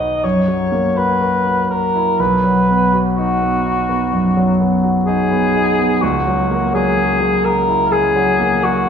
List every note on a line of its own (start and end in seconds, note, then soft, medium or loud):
0.00 0.20 B1 soft
0.00 0.26 F#3 soft
0.00 0.26 B3 soft
0.00 0.24 D#4 soft
0.00 0.26 F#4 soft
0.00 0.26 B4 soft
0.00 0.25 D#5 medium
0.24 2.16 F#2 soft
0.24 0.99 C#5 medium
0.48 0.87 F#3 soft
0.72 1.11 A#3 soft
0.96 1.36 F#4 soft
0.96 1.70 B4 medium
1.21 1.60 A#4 soft
1.47 1.86 F#4 soft
1.70 2.22 A#4 medium
1.70 2.10 A#4 soft
1.95 2.20 E4 soft
2.20 4.09 B1 medium
2.20 3.00 B4 medium
2.44 2.83 F#3 soft
2.68 3.07 B3 soft
2.93 3.32 F#4 soft
3.17 3.56 D#4 soft
3.17 4.57 F#4 medium
3.42 3.80 B3 soft
3.65 4.03 D#4 soft
3.89 4.27 B3 soft
4.13 4.51 F#2 soft
4.37 4.74 F#3 soft
4.61 4.98 B3 soft
4.83 5.21 F#4 soft
5.06 5.45 D#4 soft
5.06 6.03 G#4 medium
5.31 5.69 B3 soft
5.55 5.93 D#4 soft
5.79 6.03 B3 soft
6.01 7.88 C#2 medium
6.01 6.74 F#4 medium
6.27 6.65 F#3 soft
6.51 6.88 A#3 soft
6.74 7.11 F#3 soft
6.74 7.46 G#4 medium
6.97 7.35 C#3 soft
7.21 7.58 F#3 soft
7.45 7.82 C#3 soft
7.45 7.93 A#4 medium
7.68 8.06 E4 soft
7.92 8.30 C#3 soft
7.92 8.65 G#4 medium
8.16 8.54 F#3 soft
8.40 8.79 A#3 soft
8.63 8.89 F#3 soft
8.63 8.89 F#4 medium